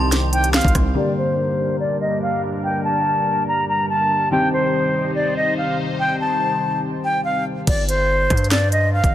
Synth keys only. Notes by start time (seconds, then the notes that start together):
Already playing: D#3 G3 C4 G4
0.94 D3 G3 A#3 G4
4.31 D#3 G3 C4 G4